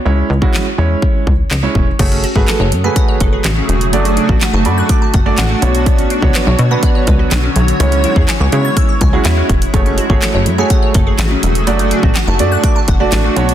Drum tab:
CC |----------------|x---------------|----------------|----------------|
HH |----------------|xxx-x-x-x-x-x-xx|xxx-x-x-x-x-x-xx|xxx-x-x-x-x-x-xx|
CP |----x-------x---|----x-------x---|----x-------x---|----x-------x---|
SD |----o-------o---|----o-------o---|----o-------o---|----o-------o---|
BD |---o----o-o---o-|o--o----o-o-----|---o----o-o-----|o--o----o-o-----|

CC |----------------|----------------|----------------|
HH |xxx-x-x-x-x-x-xx|xxx-x-x-x-x-x-xx|xxx-x-x-x-x-x-xx|
CP |----x-------x---|----x-------x---|----x-------x---|
SD |----o-------o---|----o-------o---|----o-------o---|
BD |---o----o-o---o-|o--o----o-o-----|---o----o-o-----|